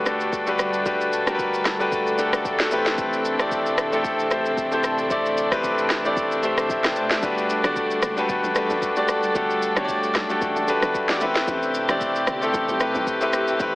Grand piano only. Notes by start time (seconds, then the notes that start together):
Already playing: A3 D4 F#4 G4 B4
0.05 A3 D4 F#4 G4 A4
0.47 A3 D4 F#4 G4 B4
0.85 A3 D4 F#4 G4 B4
1.26 A3 D4 F#4 G4 A#4
1.35 B4
1.79 A3 D4 F#4 G4 B4
2.18 A3 D4 F#4 G4 A4
2.59 A3 D4 F#4 G4 A4
2.71 A3 B3 E4 G4 B4
2.78 C4
3.39 A3 C4 E4 G4 D5
3.92 A3 C4 E4 G4 A4
4.30 A3 C4 E4 G4 C5
4.71 A3 C4 E4 G4 C5
5.10 A3 C4 E4 G4 D5
5.51 A3 C4 E4 G4 B4
6.04 A3 C4 E4 G4 D5
6.43 A3 C4 E4 G4 C5
6.70 G4 E5
6.85 B4 G5
6.97 C5 A5
7.11 G4 E5
7.22 A3 D4 F#4 G4 B4
7.64 A3 D4 F#4 G4 D5
8.17 A3 D4 F#4 G4 B4
8.55 A3 D4 F#4 G4 B4
8.96 A3 D4 F#4 G4 D5
9.35 A3 D4 F#4 G4 A4
9.76 A3 D4 F#4 G4 C#5
9.84 D5
10.29 A3 D4 F#4 G4 A4
10.68 A3 D4 F#4 G4 B4
11.09 A3 D4 F#4 G4 D5
11.21 A3 C4 E4 G4 B4
11.88 A3 C4 E4 G4 D5
12.41 A3 C4 E4 G4 A4
12.80 A3 C4 E4 G4 B4
13.21 A3 C4 E4 G4 B4
13.59 A3 C4 E4 G4 B4